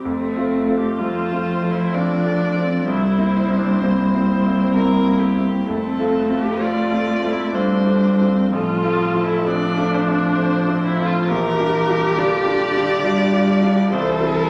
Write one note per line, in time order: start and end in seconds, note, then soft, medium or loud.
0.03 0.36 F2 medium
0.03 1.02 A3 medium
0.03 0.78 C4 medium
0.36 0.65 A3 soft
0.36 0.65 C4 soft
0.36 0.65 F4 soft
0.68 0.97 A3 soft
0.68 0.97 C4 soft
0.68 0.97 F4 soft
0.77 1.00 G4 medium
0.99 2.87 F3 medium
0.99 1.29 A3 soft
0.99 1.29 C4 soft
0.99 1.72 F4 medium
0.99 1.29 F4 soft
0.99 1.96 C5 medium
1.31 1.60 A3 soft
1.31 1.60 C4 soft
1.31 1.61 F4 soft
1.62 1.91 A3 soft
1.62 1.91 C4 soft
1.62 1.91 F4 soft
1.71 1.96 E4 medium
1.94 2.23 A3 soft
1.94 2.23 C4 soft
1.94 2.66 D4 medium
1.94 2.23 F4 soft
1.94 2.87 D5 medium
2.25 2.53 A3 soft
2.25 2.53 C4 soft
2.25 2.54 F4 soft
2.56 2.85 A3 soft
2.56 2.85 C4 soft
2.56 2.85 F4 soft
2.64 2.86 C4 medium
2.87 3.18 C2 medium
2.87 5.63 G3 soft
2.87 3.60 E4 medium
2.87 4.71 C5 medium
3.18 3.47 A#3 soft
3.18 3.47 C4 soft
3.18 3.47 E4 soft
3.50 3.79 A#3 soft
3.50 3.79 C4 soft
3.50 3.79 E4 soft
3.58 3.82 D4 medium
3.80 4.10 A#3 soft
3.80 5.67 C4 medium
3.80 4.11 C4 soft
3.80 4.11 E4 soft
4.14 4.42 A#3 soft
4.14 4.42 C4 soft
4.14 4.42 E4 soft
4.46 4.73 A#3 soft
4.46 4.73 C4 soft
4.46 4.74 E4 soft
4.74 5.03 A#3 soft
4.74 5.03 C4 soft
4.74 5.04 E4 soft
4.74 5.21 A#4 medium
5.06 5.34 A#3 soft
5.06 5.34 C4 soft
5.06 5.35 E4 soft
5.20 5.67 G4 soft
5.37 5.65 A#3 soft
5.37 5.65 C4 soft
5.37 5.65 E4 soft
5.66 5.98 F2 medium
5.66 7.55 A3 medium
5.66 6.40 C4 medium
5.66 6.63 A4 medium
5.99 6.27 A3 soft
5.99 6.27 C4 soft
5.99 6.27 F4 soft
6.30 6.58 A3 soft
6.30 6.58 C4 soft
6.30 6.58 F4 soft
6.38 6.62 G4 medium
6.61 6.88 A3 soft
6.61 6.89 C4 soft
6.61 7.33 F4 medium
6.61 6.89 F4 soft
6.61 7.56 D5 medium
6.92 7.19 A3 soft
6.92 7.20 C4 soft
6.92 7.20 F4 soft
7.22 7.50 A3 soft
7.22 7.50 C4 soft
7.22 7.50 F4 soft
7.31 7.54 E4 medium
7.53 8.51 G3 medium
7.53 7.82 A3 soft
7.53 7.82 C4 soft
7.53 8.30 D4 medium
7.53 7.82 F4 soft
7.53 8.52 C5 medium
7.85 8.16 A3 soft
7.85 8.16 C4 soft
7.85 8.16 F4 soft
8.20 8.49 A3 soft
8.20 8.49 C4 soft
8.20 8.49 F4 soft
8.29 8.55 C4 medium
8.51 8.83 A1 medium
8.51 9.43 F3 medium
8.51 9.26 F4 medium
8.51 9.48 A4 medium
8.83 9.11 A3 soft
8.83 9.11 C4 soft
8.83 9.11 F4 soft
9.14 9.42 A3 soft
9.14 9.42 C4 soft
9.14 9.42 F4 soft
9.24 9.48 E4 medium
9.45 11.30 F3 medium
9.45 9.73 A3 soft
9.45 9.73 C4 soft
9.45 10.85 D4 medium
9.45 9.74 F4 soft
9.45 9.95 D5 medium
9.77 10.04 A3 soft
9.77 10.04 C4 soft
9.77 10.04 F4 medium
9.94 11.27 C5 medium
10.07 10.34 A3 soft
10.07 10.35 C4 soft
10.07 10.35 F4 soft
10.38 10.65 A3 soft
10.38 10.65 C4 soft
10.38 10.65 F4 soft
10.68 10.95 A3 soft
10.68 10.95 C4 soft
10.68 10.95 F4 soft
10.83 11.08 E4 medium
10.99 11.26 A3 soft
10.99 11.26 C4 soft
10.99 11.27 F4 soft
11.06 11.30 F4 medium
11.27 11.58 A#1 medium
11.27 12.17 E3 medium
11.27 13.91 G4 loud
11.27 12.20 A#4 medium
11.60 11.86 G3 soft
11.60 11.86 D4 soft
11.60 11.86 F4 medium
11.89 12.15 G3 soft
11.89 12.15 D4 soft
11.89 12.15 F4 soft
12.17 13.04 D3 medium
12.17 12.43 G3 soft
12.17 12.43 D4 soft
12.17 12.43 F4 medium
12.17 13.91 D5 medium
12.46 12.72 G3 soft
12.46 12.72 D4 soft
12.46 12.73 F4 soft
12.75 13.01 G3 soft
12.75 13.02 D4 soft
12.75 13.01 F4 soft
13.03 13.91 G3 medium
13.03 13.30 G3 soft
13.03 13.30 D4 soft
13.03 13.31 F4 soft
13.34 13.60 G3 soft
13.34 13.60 D4 soft
13.34 13.61 F4 soft
13.63 13.89 G3 soft
13.63 13.89 D4 soft
13.63 13.89 F4 soft
13.91 14.20 C2 medium
13.91 14.50 E3 medium
13.91 14.50 A4 loud
13.91 14.34 C5 medium
14.20 14.46 G3 soft
14.20 14.46 C4 soft
14.20 14.46 E4 soft
14.34 14.50 A#4 medium